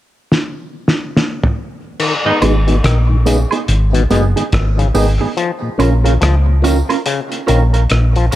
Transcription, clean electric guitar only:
2.42 B3 D#4 G#4
2.67 B3 D#4 G#4
3.26 B3 D#4 G#4
3.52 B3 D#4 G#4
4.11 B3 D#4 G#4
4.36 B3 D#4 G#4
4.95 B3 D#4 G#4
5.21 B3 D#4 G#4
5.79 C#4 F4 A#4
6.04 C#4 F4 A#4
6.64 C#4 F4 A#4
6.89 C#4 F4 A#4
7.47 C#4 F4 A#4
7.73 C#4 F4 A#4
8.32 C#4 F4

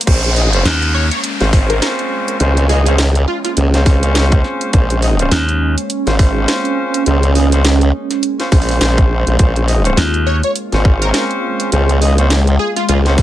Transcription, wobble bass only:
0.07 A#1
1.41 G#1
2.40 C#2
3.57 C#2
4.74 A#1
6.07 G#1
7.07 C#2
8.52 A#1
8.81 A#1
9.27 A#1
9.39 A#1
10.72 G#1
11.72 C#2
12.89 C#2

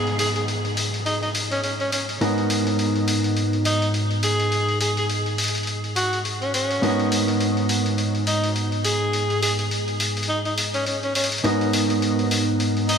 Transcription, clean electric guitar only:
Already playing: G#2 B3 D#4 F#4 A#4
2.21 G#2 B3 D#4 F#4 A#4
6.82 G#2 B3 D#4 F#4 A#4
11.44 G#2 B3 D#4 F#4 A#4

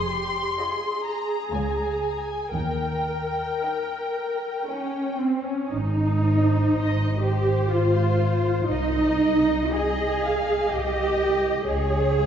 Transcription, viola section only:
0.09 G4
0.57 G#4
2.56 A#4
4.66 C#4
5.18 C4
5.45 C#4
5.72 D#4
7.21 G4
7.69 F4
8.68 D#4
9.73 G#4
10.70 G4
11.66 G#4

